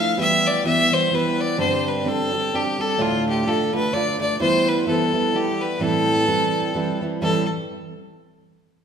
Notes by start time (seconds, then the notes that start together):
Already playing: F3 A3 D4 E4
0.00 F5
0.17 E3 G3 B3 G4
0.21 E5
0.47 D5
0.64 E3 G3 B3 G4 E5
0.91 E3 G3 B3 G4 C5
1.11 E3 G3 B3 G4 B4
1.41 D5
1.57 G2 D3 G3 C4 D4 G4 C5
1.88 B4
2.05 G3 C4 D4 G4 A4
2.32 G3 C4 D4 G4
2.52 G3 C4 D4 G4
2.78 G3 C4 D4 G4 A4
2.98 D2 A2 D3 A3 D4 F4
3.02 F4
3.29 G4
3.45 D3 A3 D4 F4 A4
3.73 D3 A3 D4 F4 B4
3.93 D3 A3 D4 F4 D5
4.19 D3 A3 D4 F4 D5
4.40 E3 G3 B3 E4 C5
4.69 B4
4.86 E3 G3 B3 E4 A4
5.12 E3 G3 B3 E4
5.33 E3 G3 B3 E4 G4
5.61 B4
5.79 A2 E3 G3 C4 E4 A4
6.27 E3 G3 C4 E4
6.74 E3 G3 C4 E4
7.01 E3 G3 C4 E4
7.21 A2 E3 G3 C4 E4 A4